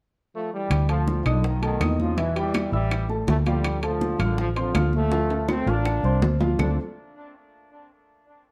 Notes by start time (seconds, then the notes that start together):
0.35 F3 A3
0.53 E3 G3
0.70 D2, high bongo, high conga, high timbale, claves
0.89 D3 F3 A3 A4 A5, high conga, high timbale
1.07 high bongo, high conga, low timbale
1.26 B1 A#2 D3 D#4 D#5 D#6, low conga, high timbale, claves
1.44 B2 D#3, high bongo, high conga
1.62 B2 D#3 A3 A4 A5, high conga, high timbale
1.81 E2 D#4 D#5 D#6, high bongo, low bongo, high conga, high timbale, low timbale, claves
2.00 C#3 F3, high conga
2.17 B2 E3 E4 E5, high bongo, high conga, high timbale
2.35 E3 G3 G4 G5, high bongo, high conga, high timbale
2.54 high bongo, high conga, high timbale, low timbale, claves
2.72 A1 E3 G3 E4 E5 E6, high conga
2.91 high bongo, high conga, high timbale, claves
3.09 A3 A4 A5, high bongo, high conga
3.27 D2 E3 A3, high bongo, low bongo, high conga, high timbale, low timbale
3.46 D3 F3 G3 F4 F5, high bongo, high conga, high timbale
3.64 high bongo, high conga, high timbale, claves
3.83 D3 F3 A3 A4 A5, high conga, high timbale
4.01 high bongo, high conga, low timbale
4.19 A1 A#2 D3 F4 F5 F6, low conga, high timbale, claves
4.38 D3 F3, high bongo, high conga
4.56 D3 F3 C4 C5 C6, high conga, high timbale
4.74 D2 F4 F5 F6, high bongo, low bongo, high conga, high timbale, low timbale, claves
4.93 F3 A3, high conga
5.11 F3 F4 F5, high bongo, high conga, high timbale
5.30 A3 A4 A5, high bongo, high conga, high timbale
5.48 A3 C4, high bongo, high conga, low timbale, claves
5.66 A1 A#3 D4 F4 F5 F6, high conga, low timbale
5.85 high bongo, high conga, claves
6.03 C2 C4 C5 C6, high bongo, high conga
6.22 D2, high bongo, low bongo, high conga, low timbale
6.40 F3 F4 F5, high bongo, high conga, low timbale
6.59 D2 D3 A3 C4 D4 F4 A4, low bongo, low conga, low timbale, claves